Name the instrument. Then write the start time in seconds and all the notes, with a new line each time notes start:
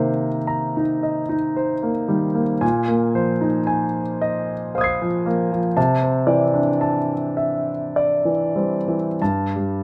grand piano
Already playing: C3 D#3 A#3 C5 A#5
0.47 A#5
0.77 D#4
1.03 D#5
1.29 D#4
1.56 C5
1.83 A#3
2.08 D#3 G3
2.35 A#3
2.61 A#2 G#5
2.88 A#3
3.15 F3 C5
3.41 D#4
3.67 G#5
4.21 D#5
4.75 C5 F5 D#6
4.81 G#6 C7
5.02 F3
5.26 F3 A#3
5.52 F3
5.77 C3 A5
6.02 C4
6.27 E3 D5
6.54 D4
6.81 A5
7.37 E5
7.96 D5
8.25 E3
8.56 G3 C4
8.88 E3
9.22 G2 A5
9.56 G3